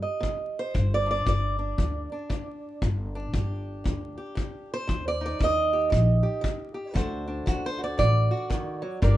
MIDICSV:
0, 0, Header, 1, 4, 480
1, 0, Start_track
1, 0, Tempo, 517241
1, 695, Time_signature, 4, 2, 24, 8
1, 8511, End_track
2, 0, Start_track
2, 0, Title_t, "Steel-string acoustic guitar"
2, 0, Program_c, 0, 25
2, 0, Note_on_c, 0, 48, 68
2, 0, Note_on_c, 0, 67, 46
2, 23, Note_on_c, 0, 75, 49
2, 166, Note_off_c, 0, 48, 0
2, 190, Note_on_c, 0, 48, 72
2, 549, Note_on_c, 0, 72, 101
2, 646, Note_off_c, 0, 48, 0
2, 668, Note_off_c, 0, 75, 0
2, 689, Note_on_c, 0, 43, 78
2, 862, Note_off_c, 0, 72, 0
2, 874, Note_on_c, 0, 74, 92
2, 985, Note_on_c, 0, 62, 49
2, 1016, Note_off_c, 0, 74, 0
2, 1027, Note_on_c, 0, 74, 91
2, 1135, Note_off_c, 0, 43, 0
2, 1168, Note_on_c, 0, 43, 75
2, 1181, Note_off_c, 0, 74, 0
2, 1194, Note_on_c, 0, 74, 93
2, 1469, Note_off_c, 0, 62, 0
2, 1473, Note_on_c, 0, 62, 43
2, 1614, Note_off_c, 0, 43, 0
2, 1658, Note_on_c, 0, 43, 66
2, 1964, Note_off_c, 0, 62, 0
2, 1968, Note_on_c, 0, 62, 46
2, 2099, Note_off_c, 0, 43, 0
2, 2130, Note_on_c, 0, 43, 74
2, 2323, Note_off_c, 0, 67, 0
2, 2575, Note_off_c, 0, 43, 0
2, 2615, Note_on_c, 0, 43, 73
2, 2623, Note_off_c, 0, 74, 0
2, 2922, Note_off_c, 0, 62, 0
2, 2925, Note_on_c, 0, 62, 49
2, 3058, Note_off_c, 0, 43, 0
2, 3095, Note_on_c, 0, 43, 73
2, 3109, Note_on_c, 0, 67, 46
2, 3538, Note_off_c, 0, 43, 0
2, 3565, Note_on_c, 0, 43, 65
2, 3864, Note_off_c, 0, 67, 0
2, 3875, Note_on_c, 0, 67, 46
2, 4013, Note_off_c, 0, 43, 0
2, 4039, Note_on_c, 0, 43, 75
2, 4376, Note_off_c, 0, 67, 0
2, 4394, Note_on_c, 0, 72, 105
2, 4490, Note_off_c, 0, 43, 0
2, 4523, Note_on_c, 0, 51, 74
2, 4704, Note_off_c, 0, 72, 0
2, 4712, Note_on_c, 0, 74, 106
2, 4835, Note_on_c, 0, 63, 47
2, 4863, Note_off_c, 0, 74, 0
2, 4878, Note_on_c, 0, 74, 91
2, 4972, Note_off_c, 0, 51, 0
2, 5004, Note_on_c, 0, 51, 66
2, 5026, Note_off_c, 0, 74, 0
2, 5047, Note_on_c, 0, 75, 106
2, 5315, Note_off_c, 0, 62, 0
2, 5319, Note_on_c, 0, 67, 49
2, 5453, Note_off_c, 0, 51, 0
2, 5474, Note_on_c, 0, 51, 74
2, 5769, Note_off_c, 0, 67, 0
2, 5780, Note_on_c, 0, 67, 48
2, 5928, Note_off_c, 0, 51, 0
2, 5950, Note_on_c, 0, 51, 77
2, 6246, Note_off_c, 0, 67, 0
2, 6258, Note_on_c, 0, 67, 51
2, 6406, Note_off_c, 0, 51, 0
2, 6426, Note_off_c, 0, 67, 0
2, 6435, Note_off_c, 0, 63, 0
2, 6437, Note_on_c, 0, 50, 78
2, 6442, Note_on_c, 0, 57, 52
2, 6450, Note_on_c, 0, 62, 51
2, 6457, Note_on_c, 0, 66, 50
2, 6461, Note_off_c, 0, 75, 0
2, 6464, Note_on_c, 0, 72, 53
2, 6748, Note_off_c, 0, 62, 0
2, 6752, Note_on_c, 0, 62, 48
2, 6890, Note_off_c, 0, 50, 0
2, 6922, Note_on_c, 0, 50, 71
2, 6929, Note_off_c, 0, 66, 0
2, 6940, Note_on_c, 0, 66, 94
2, 7098, Note_off_c, 0, 66, 0
2, 7100, Note_off_c, 0, 72, 0
2, 7110, Note_on_c, 0, 72, 104
2, 7223, Note_on_c, 0, 66, 46
2, 7263, Note_off_c, 0, 72, 0
2, 7272, Note_on_c, 0, 74, 94
2, 7373, Note_off_c, 0, 50, 0
2, 7401, Note_on_c, 0, 50, 73
2, 7402, Note_off_c, 0, 74, 0
2, 7413, Note_on_c, 0, 74, 97
2, 7700, Note_off_c, 0, 66, 0
2, 7711, Note_on_c, 0, 66, 51
2, 7852, Note_off_c, 0, 50, 0
2, 7885, Note_on_c, 0, 51, 67
2, 8181, Note_off_c, 0, 57, 0
2, 8185, Note_on_c, 0, 54, 71
2, 8188, Note_off_c, 0, 51, 0
2, 8353, Note_off_c, 0, 66, 0
2, 8367, Note_off_c, 0, 54, 0
2, 8369, Note_on_c, 0, 43, 82
2, 8371, Note_off_c, 0, 62, 0
2, 8371, Note_on_c, 0, 62, 54
2, 8375, Note_off_c, 0, 74, 0
2, 8377, Note_on_c, 0, 67, 53
2, 8386, Note_on_c, 0, 70, 53
2, 8392, Note_on_c, 0, 74, 51
2, 8511, Note_off_c, 0, 43, 0
2, 8511, Note_off_c, 0, 62, 0
2, 8511, Note_off_c, 0, 67, 0
2, 8511, Note_off_c, 0, 70, 0
2, 8511, Note_off_c, 0, 74, 0
2, 8511, End_track
3, 0, Start_track
3, 0, Title_t, "Upright bass"
3, 0, Program_c, 1, 32
3, 695, Note_on_c, 1, 31, 98
3, 1120, Note_off_c, 1, 31, 0
3, 1174, Note_on_c, 1, 31, 79
3, 1599, Note_off_c, 1, 31, 0
3, 1651, Note_on_c, 1, 38, 89
3, 1916, Note_off_c, 1, 38, 0
3, 2616, Note_on_c, 1, 31, 101
3, 3040, Note_off_c, 1, 31, 0
3, 3092, Note_on_c, 1, 31, 84
3, 3518, Note_off_c, 1, 31, 0
3, 3578, Note_on_c, 1, 38, 94
3, 3840, Note_off_c, 1, 38, 0
3, 4538, Note_on_c, 1, 39, 97
3, 4961, Note_off_c, 1, 39, 0
3, 5015, Note_on_c, 1, 39, 75
3, 5440, Note_off_c, 1, 39, 0
3, 5495, Note_on_c, 1, 34, 99
3, 5758, Note_off_c, 1, 34, 0
3, 6451, Note_on_c, 1, 38, 104
3, 6878, Note_off_c, 1, 38, 0
3, 6935, Note_on_c, 1, 38, 78
3, 7361, Note_off_c, 1, 38, 0
3, 7411, Note_on_c, 1, 33, 95
3, 7677, Note_off_c, 1, 33, 0
3, 8374, Note_on_c, 1, 31, 114
3, 8511, Note_off_c, 1, 31, 0
3, 8511, End_track
4, 0, Start_track
4, 0, Title_t, "Drums"
4, 215, Note_on_c, 9, 36, 58
4, 308, Note_off_c, 9, 36, 0
4, 694, Note_on_c, 9, 36, 61
4, 787, Note_off_c, 9, 36, 0
4, 1175, Note_on_c, 9, 36, 64
4, 1267, Note_off_c, 9, 36, 0
4, 1655, Note_on_c, 9, 36, 65
4, 1748, Note_off_c, 9, 36, 0
4, 2136, Note_on_c, 9, 36, 61
4, 2228, Note_off_c, 9, 36, 0
4, 2616, Note_on_c, 9, 36, 68
4, 2709, Note_off_c, 9, 36, 0
4, 3097, Note_on_c, 9, 36, 68
4, 3189, Note_off_c, 9, 36, 0
4, 3578, Note_on_c, 9, 36, 63
4, 3671, Note_off_c, 9, 36, 0
4, 4057, Note_on_c, 9, 36, 61
4, 4150, Note_off_c, 9, 36, 0
4, 4537, Note_on_c, 9, 36, 63
4, 4630, Note_off_c, 9, 36, 0
4, 5017, Note_on_c, 9, 36, 68
4, 5109, Note_off_c, 9, 36, 0
4, 5496, Note_on_c, 9, 36, 70
4, 5589, Note_off_c, 9, 36, 0
4, 5976, Note_on_c, 9, 36, 67
4, 6069, Note_off_c, 9, 36, 0
4, 6455, Note_on_c, 9, 36, 64
4, 6548, Note_off_c, 9, 36, 0
4, 6934, Note_on_c, 9, 36, 72
4, 7027, Note_off_c, 9, 36, 0
4, 7413, Note_on_c, 9, 36, 68
4, 7506, Note_off_c, 9, 36, 0
4, 7892, Note_on_c, 9, 36, 67
4, 7985, Note_off_c, 9, 36, 0
4, 8375, Note_on_c, 9, 36, 64
4, 8467, Note_off_c, 9, 36, 0
4, 8511, End_track
0, 0, End_of_file